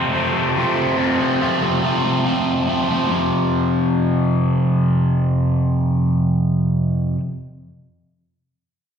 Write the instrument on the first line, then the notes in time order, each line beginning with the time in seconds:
overdriven electric guitar
Already playing: F2 C3 F3 A3 C4
0.13 C3 F3 A3 C4
0.36 F3 A3 C4
0.57 F2 C3 F3 A3 C4
0.97 C3 F3 A3 C4
1.19 F3 A3 C4
1.40 F2 C3 F3 A3 C4
1.61 F3 A3 C4
1.82 C3 F3 A3 C4
2.02 F3 A3 C4
2.24 F2 C3 F3 A3 C4
2.67 C3 F3 A3 C4
2.89 F3 A3 C4
3.09 F2 C3 F3